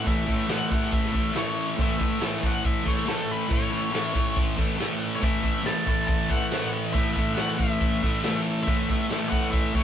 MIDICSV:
0, 0, Header, 1, 4, 480
1, 0, Start_track
1, 0, Key_signature, 3, "major"
1, 0, Tempo, 430108
1, 80, Time_signature, 4, 2, 24, 8
1, 10976, End_track
2, 0, Start_track
2, 0, Title_t, "Lead electric guitar"
2, 0, Program_c, 0, 29
2, 80, Note_on_c, 0, 76, 104
2, 555, Note_off_c, 0, 76, 0
2, 559, Note_on_c, 0, 78, 105
2, 1039, Note_off_c, 0, 78, 0
2, 1044, Note_on_c, 0, 76, 102
2, 1536, Note_off_c, 0, 76, 0
2, 1536, Note_on_c, 0, 73, 95
2, 1863, Note_off_c, 0, 73, 0
2, 2032, Note_on_c, 0, 76, 103
2, 2463, Note_off_c, 0, 76, 0
2, 2750, Note_on_c, 0, 78, 86
2, 2959, Note_off_c, 0, 78, 0
2, 2969, Note_on_c, 0, 76, 97
2, 3188, Note_off_c, 0, 76, 0
2, 3213, Note_on_c, 0, 73, 87
2, 3430, Note_off_c, 0, 73, 0
2, 3443, Note_on_c, 0, 69, 85
2, 3688, Note_off_c, 0, 69, 0
2, 3699, Note_on_c, 0, 71, 77
2, 3913, Note_off_c, 0, 71, 0
2, 3948, Note_on_c, 0, 73, 86
2, 4850, Note_off_c, 0, 73, 0
2, 5755, Note_on_c, 0, 73, 81
2, 5838, Note_off_c, 0, 73, 0
2, 5844, Note_on_c, 0, 76, 104
2, 6318, Note_on_c, 0, 81, 104
2, 6337, Note_off_c, 0, 76, 0
2, 6762, Note_off_c, 0, 81, 0
2, 6776, Note_on_c, 0, 81, 103
2, 7025, Note_on_c, 0, 78, 104
2, 7037, Note_off_c, 0, 81, 0
2, 7479, Note_off_c, 0, 78, 0
2, 7742, Note_on_c, 0, 76, 103
2, 7952, Note_off_c, 0, 76, 0
2, 7966, Note_on_c, 0, 76, 97
2, 8197, Note_off_c, 0, 76, 0
2, 8202, Note_on_c, 0, 78, 97
2, 8433, Note_off_c, 0, 78, 0
2, 8438, Note_on_c, 0, 76, 97
2, 9375, Note_off_c, 0, 76, 0
2, 9636, Note_on_c, 0, 76, 105
2, 10104, Note_off_c, 0, 76, 0
2, 10371, Note_on_c, 0, 78, 87
2, 10615, Note_off_c, 0, 78, 0
2, 10620, Note_on_c, 0, 76, 93
2, 10878, Note_off_c, 0, 76, 0
2, 10883, Note_on_c, 0, 73, 84
2, 10976, Note_off_c, 0, 73, 0
2, 10976, End_track
3, 0, Start_track
3, 0, Title_t, "Distorted electric guitar"
3, 0, Program_c, 1, 30
3, 48, Note_on_c, 1, 45, 95
3, 67, Note_on_c, 1, 52, 97
3, 83, Note_on_c, 1, 57, 100
3, 287, Note_off_c, 1, 57, 0
3, 292, Note_on_c, 1, 57, 70
3, 316, Note_off_c, 1, 52, 0
3, 321, Note_on_c, 1, 52, 55
3, 525, Note_off_c, 1, 45, 0
3, 530, Note_on_c, 1, 45, 70
3, 544, Note_off_c, 1, 52, 0
3, 548, Note_on_c, 1, 52, 80
3, 559, Note_off_c, 1, 57, 0
3, 564, Note_on_c, 1, 57, 86
3, 778, Note_off_c, 1, 57, 0
3, 782, Note_on_c, 1, 57, 67
3, 808, Note_off_c, 1, 52, 0
3, 813, Note_on_c, 1, 52, 59
3, 1253, Note_off_c, 1, 57, 0
3, 1258, Note_on_c, 1, 57, 73
3, 1287, Note_off_c, 1, 52, 0
3, 1292, Note_on_c, 1, 52, 58
3, 1486, Note_off_c, 1, 45, 0
3, 1490, Note_on_c, 1, 45, 86
3, 1506, Note_off_c, 1, 52, 0
3, 1511, Note_on_c, 1, 52, 93
3, 1519, Note_off_c, 1, 57, 0
3, 1523, Note_on_c, 1, 57, 105
3, 1968, Note_off_c, 1, 45, 0
3, 1972, Note_on_c, 1, 45, 85
3, 1992, Note_off_c, 1, 52, 0
3, 1997, Note_on_c, 1, 52, 88
3, 2007, Note_off_c, 1, 57, 0
3, 2011, Note_on_c, 1, 57, 97
3, 2210, Note_off_c, 1, 57, 0
3, 2214, Note_on_c, 1, 57, 64
3, 2242, Note_off_c, 1, 52, 0
3, 2247, Note_on_c, 1, 52, 56
3, 2456, Note_off_c, 1, 45, 0
3, 2460, Note_on_c, 1, 45, 69
3, 2468, Note_off_c, 1, 52, 0
3, 2473, Note_on_c, 1, 52, 75
3, 2489, Note_off_c, 1, 57, 0
3, 2494, Note_on_c, 1, 57, 78
3, 2687, Note_off_c, 1, 57, 0
3, 2691, Note_on_c, 1, 57, 69
3, 2719, Note_off_c, 1, 52, 0
3, 2723, Note_on_c, 1, 52, 60
3, 3169, Note_off_c, 1, 57, 0
3, 3173, Note_on_c, 1, 57, 77
3, 3208, Note_off_c, 1, 52, 0
3, 3212, Note_on_c, 1, 52, 58
3, 3405, Note_off_c, 1, 45, 0
3, 3410, Note_on_c, 1, 45, 85
3, 3424, Note_off_c, 1, 52, 0
3, 3428, Note_on_c, 1, 52, 88
3, 3438, Note_off_c, 1, 57, 0
3, 3443, Note_on_c, 1, 57, 97
3, 3892, Note_off_c, 1, 45, 0
3, 3896, Note_on_c, 1, 45, 94
3, 3912, Note_off_c, 1, 52, 0
3, 3916, Note_on_c, 1, 52, 96
3, 3925, Note_off_c, 1, 57, 0
3, 3929, Note_on_c, 1, 57, 102
3, 4136, Note_off_c, 1, 57, 0
3, 4140, Note_on_c, 1, 57, 67
3, 4161, Note_off_c, 1, 52, 0
3, 4165, Note_on_c, 1, 52, 54
3, 4357, Note_off_c, 1, 45, 0
3, 4361, Note_on_c, 1, 45, 65
3, 4374, Note_off_c, 1, 52, 0
3, 4378, Note_on_c, 1, 52, 79
3, 4384, Note_off_c, 1, 57, 0
3, 4389, Note_on_c, 1, 57, 81
3, 4608, Note_off_c, 1, 57, 0
3, 4612, Note_on_c, 1, 57, 69
3, 4641, Note_off_c, 1, 52, 0
3, 4645, Note_on_c, 1, 52, 54
3, 5093, Note_off_c, 1, 57, 0
3, 5097, Note_on_c, 1, 57, 79
3, 5130, Note_off_c, 1, 52, 0
3, 5135, Note_on_c, 1, 52, 60
3, 5332, Note_off_c, 1, 45, 0
3, 5336, Note_on_c, 1, 45, 91
3, 5346, Note_off_c, 1, 52, 0
3, 5350, Note_on_c, 1, 52, 103
3, 5364, Note_off_c, 1, 57, 0
3, 5368, Note_on_c, 1, 57, 101
3, 5806, Note_off_c, 1, 45, 0
3, 5810, Note_on_c, 1, 45, 90
3, 5828, Note_off_c, 1, 52, 0
3, 5833, Note_on_c, 1, 52, 91
3, 5838, Note_off_c, 1, 57, 0
3, 5842, Note_on_c, 1, 57, 89
3, 6045, Note_off_c, 1, 57, 0
3, 6050, Note_on_c, 1, 57, 66
3, 6082, Note_off_c, 1, 52, 0
3, 6087, Note_on_c, 1, 52, 57
3, 6288, Note_off_c, 1, 45, 0
3, 6292, Note_on_c, 1, 45, 70
3, 6305, Note_off_c, 1, 52, 0
3, 6309, Note_on_c, 1, 52, 78
3, 6323, Note_off_c, 1, 57, 0
3, 6327, Note_on_c, 1, 57, 79
3, 6534, Note_off_c, 1, 57, 0
3, 6538, Note_on_c, 1, 57, 68
3, 6568, Note_off_c, 1, 52, 0
3, 6573, Note_on_c, 1, 52, 57
3, 7018, Note_off_c, 1, 57, 0
3, 7022, Note_on_c, 1, 57, 69
3, 7050, Note_off_c, 1, 52, 0
3, 7054, Note_on_c, 1, 52, 65
3, 7266, Note_off_c, 1, 45, 0
3, 7271, Note_on_c, 1, 45, 87
3, 7281, Note_off_c, 1, 52, 0
3, 7286, Note_on_c, 1, 52, 102
3, 7295, Note_off_c, 1, 57, 0
3, 7299, Note_on_c, 1, 57, 106
3, 7742, Note_off_c, 1, 45, 0
3, 7746, Note_on_c, 1, 45, 91
3, 7765, Note_off_c, 1, 52, 0
3, 7769, Note_on_c, 1, 52, 93
3, 7779, Note_off_c, 1, 57, 0
3, 7784, Note_on_c, 1, 57, 102
3, 7981, Note_off_c, 1, 57, 0
3, 7986, Note_on_c, 1, 57, 65
3, 8020, Note_off_c, 1, 52, 0
3, 8025, Note_on_c, 1, 52, 58
3, 8236, Note_off_c, 1, 45, 0
3, 8240, Note_on_c, 1, 45, 74
3, 8257, Note_off_c, 1, 52, 0
3, 8262, Note_on_c, 1, 52, 79
3, 8268, Note_off_c, 1, 57, 0
3, 8272, Note_on_c, 1, 57, 87
3, 8465, Note_off_c, 1, 57, 0
3, 8469, Note_on_c, 1, 57, 65
3, 8500, Note_off_c, 1, 52, 0
3, 8504, Note_on_c, 1, 52, 59
3, 8957, Note_off_c, 1, 57, 0
3, 8962, Note_on_c, 1, 57, 74
3, 8992, Note_off_c, 1, 52, 0
3, 8997, Note_on_c, 1, 52, 55
3, 9193, Note_off_c, 1, 45, 0
3, 9197, Note_on_c, 1, 45, 89
3, 9215, Note_off_c, 1, 52, 0
3, 9220, Note_on_c, 1, 52, 100
3, 9233, Note_off_c, 1, 57, 0
3, 9237, Note_on_c, 1, 57, 103
3, 9675, Note_off_c, 1, 45, 0
3, 9679, Note_on_c, 1, 45, 93
3, 9689, Note_off_c, 1, 52, 0
3, 9693, Note_on_c, 1, 52, 96
3, 9705, Note_off_c, 1, 57, 0
3, 9710, Note_on_c, 1, 57, 105
3, 9917, Note_off_c, 1, 57, 0
3, 9921, Note_on_c, 1, 57, 65
3, 9943, Note_off_c, 1, 52, 0
3, 9947, Note_on_c, 1, 52, 51
3, 10154, Note_off_c, 1, 45, 0
3, 10159, Note_on_c, 1, 45, 70
3, 10172, Note_off_c, 1, 52, 0
3, 10177, Note_on_c, 1, 52, 80
3, 10186, Note_off_c, 1, 57, 0
3, 10191, Note_on_c, 1, 57, 79
3, 10385, Note_off_c, 1, 57, 0
3, 10390, Note_on_c, 1, 57, 63
3, 10412, Note_off_c, 1, 52, 0
3, 10417, Note_on_c, 1, 52, 56
3, 10866, Note_off_c, 1, 57, 0
3, 10871, Note_on_c, 1, 57, 71
3, 10891, Note_off_c, 1, 52, 0
3, 10905, Note_on_c, 1, 52, 61
3, 10976, Note_off_c, 1, 45, 0
3, 10976, Note_off_c, 1, 52, 0
3, 10976, Note_off_c, 1, 57, 0
3, 10976, End_track
4, 0, Start_track
4, 0, Title_t, "Drums"
4, 71, Note_on_c, 9, 51, 96
4, 75, Note_on_c, 9, 36, 107
4, 183, Note_off_c, 9, 51, 0
4, 187, Note_off_c, 9, 36, 0
4, 318, Note_on_c, 9, 36, 74
4, 322, Note_on_c, 9, 51, 71
4, 429, Note_off_c, 9, 36, 0
4, 434, Note_off_c, 9, 51, 0
4, 550, Note_on_c, 9, 51, 95
4, 555, Note_on_c, 9, 38, 109
4, 662, Note_off_c, 9, 51, 0
4, 666, Note_off_c, 9, 38, 0
4, 797, Note_on_c, 9, 36, 88
4, 798, Note_on_c, 9, 51, 73
4, 909, Note_off_c, 9, 36, 0
4, 909, Note_off_c, 9, 51, 0
4, 1027, Note_on_c, 9, 51, 90
4, 1035, Note_on_c, 9, 36, 104
4, 1138, Note_off_c, 9, 51, 0
4, 1147, Note_off_c, 9, 36, 0
4, 1168, Note_on_c, 9, 38, 35
4, 1275, Note_on_c, 9, 51, 72
4, 1277, Note_on_c, 9, 36, 81
4, 1280, Note_off_c, 9, 38, 0
4, 1387, Note_off_c, 9, 51, 0
4, 1389, Note_off_c, 9, 36, 0
4, 1511, Note_on_c, 9, 51, 82
4, 1515, Note_on_c, 9, 38, 100
4, 1623, Note_off_c, 9, 51, 0
4, 1627, Note_off_c, 9, 38, 0
4, 1760, Note_on_c, 9, 51, 67
4, 1872, Note_off_c, 9, 51, 0
4, 1992, Note_on_c, 9, 51, 93
4, 1998, Note_on_c, 9, 36, 115
4, 2104, Note_off_c, 9, 51, 0
4, 2110, Note_off_c, 9, 36, 0
4, 2235, Note_on_c, 9, 51, 65
4, 2236, Note_on_c, 9, 36, 82
4, 2347, Note_off_c, 9, 51, 0
4, 2348, Note_off_c, 9, 36, 0
4, 2472, Note_on_c, 9, 51, 89
4, 2476, Note_on_c, 9, 38, 110
4, 2583, Note_off_c, 9, 51, 0
4, 2588, Note_off_c, 9, 38, 0
4, 2712, Note_on_c, 9, 51, 65
4, 2715, Note_on_c, 9, 36, 85
4, 2823, Note_off_c, 9, 51, 0
4, 2827, Note_off_c, 9, 36, 0
4, 2956, Note_on_c, 9, 36, 103
4, 2956, Note_on_c, 9, 51, 88
4, 3068, Note_off_c, 9, 36, 0
4, 3068, Note_off_c, 9, 51, 0
4, 3194, Note_on_c, 9, 51, 72
4, 3195, Note_on_c, 9, 36, 83
4, 3306, Note_off_c, 9, 51, 0
4, 3307, Note_off_c, 9, 36, 0
4, 3322, Note_on_c, 9, 38, 35
4, 3434, Note_off_c, 9, 38, 0
4, 3434, Note_on_c, 9, 51, 82
4, 3439, Note_on_c, 9, 38, 99
4, 3546, Note_off_c, 9, 51, 0
4, 3550, Note_off_c, 9, 38, 0
4, 3685, Note_on_c, 9, 51, 73
4, 3797, Note_off_c, 9, 51, 0
4, 3915, Note_on_c, 9, 36, 114
4, 3916, Note_on_c, 9, 51, 103
4, 4027, Note_off_c, 9, 36, 0
4, 4027, Note_off_c, 9, 51, 0
4, 4163, Note_on_c, 9, 51, 70
4, 4274, Note_off_c, 9, 51, 0
4, 4401, Note_on_c, 9, 51, 93
4, 4405, Note_on_c, 9, 38, 109
4, 4512, Note_off_c, 9, 51, 0
4, 4517, Note_off_c, 9, 38, 0
4, 4635, Note_on_c, 9, 36, 88
4, 4644, Note_on_c, 9, 51, 72
4, 4747, Note_off_c, 9, 36, 0
4, 4756, Note_off_c, 9, 51, 0
4, 4875, Note_on_c, 9, 36, 114
4, 4879, Note_on_c, 9, 51, 103
4, 4986, Note_off_c, 9, 36, 0
4, 4991, Note_off_c, 9, 51, 0
4, 5113, Note_on_c, 9, 36, 90
4, 5116, Note_on_c, 9, 51, 76
4, 5225, Note_off_c, 9, 36, 0
4, 5227, Note_off_c, 9, 51, 0
4, 5244, Note_on_c, 9, 38, 32
4, 5356, Note_off_c, 9, 38, 0
4, 5358, Note_on_c, 9, 51, 85
4, 5362, Note_on_c, 9, 38, 106
4, 5469, Note_off_c, 9, 51, 0
4, 5474, Note_off_c, 9, 38, 0
4, 5598, Note_on_c, 9, 51, 72
4, 5710, Note_off_c, 9, 51, 0
4, 5833, Note_on_c, 9, 36, 120
4, 5833, Note_on_c, 9, 51, 92
4, 5945, Note_off_c, 9, 36, 0
4, 5945, Note_off_c, 9, 51, 0
4, 6065, Note_on_c, 9, 51, 66
4, 6070, Note_on_c, 9, 36, 72
4, 6176, Note_off_c, 9, 51, 0
4, 6182, Note_off_c, 9, 36, 0
4, 6312, Note_on_c, 9, 51, 90
4, 6316, Note_on_c, 9, 38, 108
4, 6423, Note_off_c, 9, 51, 0
4, 6428, Note_off_c, 9, 38, 0
4, 6551, Note_on_c, 9, 51, 66
4, 6553, Note_on_c, 9, 36, 87
4, 6662, Note_off_c, 9, 51, 0
4, 6664, Note_off_c, 9, 36, 0
4, 6785, Note_on_c, 9, 51, 91
4, 6792, Note_on_c, 9, 36, 109
4, 6897, Note_off_c, 9, 51, 0
4, 6904, Note_off_c, 9, 36, 0
4, 7031, Note_on_c, 9, 51, 70
4, 7032, Note_on_c, 9, 36, 85
4, 7143, Note_off_c, 9, 36, 0
4, 7143, Note_off_c, 9, 51, 0
4, 7272, Note_on_c, 9, 51, 79
4, 7276, Note_on_c, 9, 38, 96
4, 7383, Note_off_c, 9, 51, 0
4, 7388, Note_off_c, 9, 38, 0
4, 7508, Note_on_c, 9, 51, 72
4, 7620, Note_off_c, 9, 51, 0
4, 7740, Note_on_c, 9, 51, 94
4, 7751, Note_on_c, 9, 36, 110
4, 7851, Note_off_c, 9, 51, 0
4, 7863, Note_off_c, 9, 36, 0
4, 7985, Note_on_c, 9, 51, 73
4, 7993, Note_on_c, 9, 36, 77
4, 8097, Note_off_c, 9, 51, 0
4, 8105, Note_off_c, 9, 36, 0
4, 8223, Note_on_c, 9, 51, 95
4, 8227, Note_on_c, 9, 38, 111
4, 8334, Note_off_c, 9, 51, 0
4, 8339, Note_off_c, 9, 38, 0
4, 8473, Note_on_c, 9, 51, 73
4, 8476, Note_on_c, 9, 36, 84
4, 8584, Note_off_c, 9, 51, 0
4, 8588, Note_off_c, 9, 36, 0
4, 8713, Note_on_c, 9, 51, 101
4, 8718, Note_on_c, 9, 36, 109
4, 8825, Note_off_c, 9, 51, 0
4, 8830, Note_off_c, 9, 36, 0
4, 8957, Note_on_c, 9, 51, 76
4, 8959, Note_on_c, 9, 36, 87
4, 9069, Note_off_c, 9, 51, 0
4, 9071, Note_off_c, 9, 36, 0
4, 9189, Note_on_c, 9, 51, 92
4, 9193, Note_on_c, 9, 38, 97
4, 9300, Note_off_c, 9, 51, 0
4, 9305, Note_off_c, 9, 38, 0
4, 9425, Note_on_c, 9, 51, 71
4, 9537, Note_off_c, 9, 51, 0
4, 9675, Note_on_c, 9, 51, 100
4, 9681, Note_on_c, 9, 36, 111
4, 9787, Note_off_c, 9, 51, 0
4, 9793, Note_off_c, 9, 36, 0
4, 9923, Note_on_c, 9, 36, 78
4, 9927, Note_on_c, 9, 51, 68
4, 10035, Note_off_c, 9, 36, 0
4, 10038, Note_off_c, 9, 51, 0
4, 10159, Note_on_c, 9, 51, 93
4, 10163, Note_on_c, 9, 38, 102
4, 10270, Note_off_c, 9, 51, 0
4, 10275, Note_off_c, 9, 38, 0
4, 10400, Note_on_c, 9, 51, 69
4, 10402, Note_on_c, 9, 36, 83
4, 10512, Note_off_c, 9, 51, 0
4, 10513, Note_off_c, 9, 36, 0
4, 10635, Note_on_c, 9, 51, 84
4, 10641, Note_on_c, 9, 36, 105
4, 10746, Note_off_c, 9, 51, 0
4, 10752, Note_off_c, 9, 36, 0
4, 10877, Note_on_c, 9, 51, 71
4, 10878, Note_on_c, 9, 36, 89
4, 10976, Note_off_c, 9, 36, 0
4, 10976, Note_off_c, 9, 51, 0
4, 10976, End_track
0, 0, End_of_file